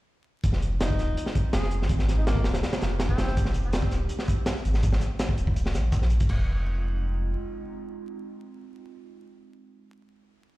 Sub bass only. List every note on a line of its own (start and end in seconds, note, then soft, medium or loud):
0.44 0.97 F1 loud
0.99 1.15 D#1 loud
1.54 1.83 F1 loud
1.81 2.44 G#1 medium
2.45 2.62 D#1 loud
2.82 3.81 F1 medium
3.91 4.08 D#1 loud
4.64 5.00 G#1 loud
5.38 5.76 D#1 medium
5.74 6.19 A#1 medium
6.29 7.35 F1 loud